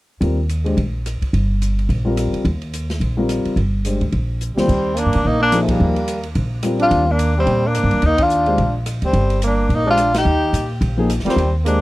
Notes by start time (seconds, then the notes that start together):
0.20 D#2 G3 C4 F4 A#4, ride
0.49 hi-hat pedal, ride
0.64 G#3 D4 G4 C5, ride
0.77 A#1, ride
1.06 cross-stick, hi-hat pedal, ride
1.22 muted upright bass stroke, kick, ride
1.33 G1, ride
1.62 hi-hat pedal, ride
1.79 ride
1.89 A#1, ride
2.05 G3 C4 F4 A#4
2.17 cross-stick, hi-hat pedal, ride
2.33 muted upright bass stroke, ride
2.45 D#2, ride
2.62 ride
2.73 hi-hat pedal, ride
2.90 snare, ride
3.00 A#1, ride
3.17 G3 C4 F4 A#4
3.29 cross-stick, hi-hat pedal, ride
3.45 muted upright bass stroke, ride
3.56 G1, ride
3.85 G#3 D4 G4 C5, hi-hat pedal, ride
4.01 D2, ride
4.12 A#1, ride
4.41 hi-hat pedal
4.55 D#2 G3 C4 F4 C5, muted upright bass stroke, snare
4.59 C4
4.68 D#2, kick, crash
4.95 A#3, hi-hat pedal, ride
4.99 D4
5.06 G2
5.13 A#2, ride
5.23 A#1 A#3 D#4
5.41 A#3 D4
5.52 F3 A#3 D#4 G#4, cross-stick, hi-hat pedal, ride
5.61 F3 A3
5.68 G3 A#3, kick, ride
5.80 D#2
5.96 ride
6.08 hi-hat pedal, ride
6.23 ride
6.35 A#1, ride
6.63 G3 C4 F4 A#4, cross-stick, hi-hat pedal, ride
6.79 D4 F4, ride
6.91 D#2, ride
7.10 A#3 D4
7.19 hi-hat pedal, ride
7.38 G3 C4
7.46 A#2, ride
7.66 A#3 D4
7.75 cross-stick, hi-hat pedal, ride
7.84 G2
7.91 E2, ride
8.02 D#2 A#3, ride
8.06 D#4
8.18 D4, kick, ride
8.22 F4
8.30 hi-hat pedal
8.46 G#3 D4 G4 C5, ride
8.58 A#1, ride
8.86 cross-stick, hi-hat pedal, ride
9.02 D2 G3 C4, ride
9.13 G1, ride
9.30 ride
9.42 A#3, hi-hat pedal, ride
9.47 D4
9.69 A#1 A#3, ride
9.75 D#4
9.85 G#3 D4 G4 C5
9.90 F4
9.97 cross-stick, hi-hat pedal, ride
10.14 D#4 G4, snare, ride
10.25 D#2
10.53 A#2, hi-hat pedal, ride
10.81 A#1, ride
10.97 F3 A#3 D#4 G#4
11.10 cross-stick, hi-hat pedal, ride
11.20 snare
11.25 G3 C4 F4 A#4, muted upright bass stroke, ride
11.29 C4, snare
11.36 D#2, ride
11.64 G#3 A#3 D4 G4 C5, hi-hat pedal, ride